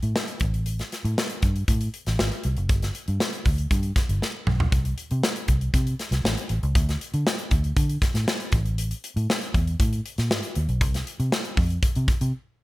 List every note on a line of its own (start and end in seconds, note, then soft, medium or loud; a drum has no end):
0.03 0.13 A2 medium
0.03 closed hi-hat medium
0.16 snare loud
0.28 closed hi-hat medium
0.40 0.80 A1 loud
0.40 kick loud
0.40 closed hi-hat medium
0.54 closed hi-hat soft
0.66 closed hi-hat medium
0.79 snare soft
0.79 closed hi-hat medium
0.92 snare soft
0.92 closed hi-hat medium
1.05 1.14 A2 loud
1.05 closed hi-hat soft
1.18 snare loud
1.30 closed hi-hat medium
1.42 1.62 G2 medium
1.42 kick medium
1.42 closed hi-hat medium
1.56 closed hi-hat soft
1.68 1.88 A2 loud
1.68 kick medium
1.68 closed hi-hat medium
1.81 closed hi-hat medium
1.94 closed hi-hat medium
2.06 2.16 A1 medium
2.06 snare soft
2.06 closed hi-hat medium
2.19 2.29 G#1 medium
2.19 snare loud
2.32 closed hi-hat medium
2.43 2.54 C2 medium
2.43 closed hi-hat medium
2.57 2.69 F#1 medium
2.57 closed hi-hat soft
2.69 2.89 G1 loud
2.69 kick loud
2.69 closed hi-hat medium
2.82 snare soft
2.82 closed hi-hat medium
2.95 closed hi-hat medium
3.08 3.18 G2 medium
3.08 closed hi-hat soft
3.20 snare loud
3.33 closed hi-hat medium
3.45 3.65 D2 medium
3.45 kick medium
3.45 open hi-hat medium
3.58 closed hi-hat soft
3.71 3.91 G2 loud
3.71 kick medium
3.71 closed hi-hat loud
3.83 closed hi-hat medium
3.96 kick loud
3.96 snare soft
3.96 closed hi-hat medium
4.09 4.19 G1 medium
4.09 closed hi-hat medium
4.22 snare medium
4.47 4.67 B1 medium
4.47 mid tom medium
4.60 floor tom medium
4.72 4.92 C2 medium
4.72 kick loud
4.72 closed hi-hat medium
4.85 closed hi-hat medium
4.98 closed hi-hat medium
5.11 5.21 C3 loud
5.11 closed hi-hat soft
5.23 snare loud
5.36 closed hi-hat medium
5.48 5.68 C2 medium
5.48 kick medium
5.48 closed hi-hat medium
5.61 closed hi-hat soft
5.74 5.94 C3 loud
5.74 kick loud
5.74 closed hi-hat loud
5.87 closed hi-hat medium
5.99 snare soft
5.99 closed hi-hat medium
6.11 6.21 C2 medium
6.11 snare soft
6.11 closed hi-hat medium
6.24 6.34 A1 medium
6.24 snare loud
6.37 closed hi-hat medium
6.49 6.60 A1 medium
6.49 closed hi-hat medium
6.63 6.73 C#2 medium
6.63 closed hi-hat soft
6.75 6.95 D2 loud
6.75 kick loud
6.75 closed hi-hat medium
6.89 snare soft
6.89 closed hi-hat medium
7.01 closed hi-hat medium
7.14 7.23 D3 loud
7.14 closed hi-hat medium
7.27 snare loud
7.38 closed hi-hat medium
7.51 7.71 D2 medium
7.51 kick medium
7.51 closed hi-hat medium
7.64 closed hi-hat soft
7.76 7.96 D3 loud
7.76 kick loud
7.76 closed hi-hat loud
7.89 closed hi-hat medium
8.02 kick medium
8.02 snare soft
8.02 closed hi-hat medium
8.14 8.24 A2 medium
8.14 snare soft
8.14 closed hi-hat medium
8.28 snare loud
8.40 closed hi-hat medium
8.52 8.92 A1 loud
8.52 kick loud
8.52 closed hi-hat medium
8.66 closed hi-hat soft
8.78 closed hi-hat medium
8.91 closed hi-hat medium
9.04 closed hi-hat medium
9.16 9.26 A2 loud
9.16 closed hi-hat medium
9.30 snare loud
9.41 closed hi-hat medium
9.54 9.74 E2 medium
9.54 kick medium
9.54 closed hi-hat medium
9.67 closed hi-hat soft
9.80 10.00 A2 loud
9.80 kick loud
9.80 closed hi-hat medium
9.93 closed hi-hat medium
10.06 closed hi-hat medium
10.18 10.31 A#2 medium
10.18 snare soft
10.18 closed hi-hat medium
10.31 10.41 G#2 loud
10.31 snare loud
10.43 closed hi-hat medium
10.55 10.66 D#2 medium
10.55 closed hi-hat medium
10.69 10.81 B1 medium
10.69 closed hi-hat soft
10.81 11.01 C2 loud
10.81 kick loud
10.81 closed hi-hat medium
10.94 snare soft
10.94 closed hi-hat medium
11.07 closed hi-hat medium
11.20 11.29 C3 medium
11.20 closed hi-hat medium
11.32 snare loud
11.45 closed hi-hat medium
11.57 11.77 F2 medium
11.57 kick loud
11.57 open hi-hat medium
11.70 closed hi-hat soft
11.83 kick loud
11.83 closed hi-hat loud
11.95 12.06 C3 medium
11.95 closed hi-hat medium
12.08 kick medium
12.08 closed hi-hat medium
12.21 12.31 C3 medium
12.21 closed hi-hat medium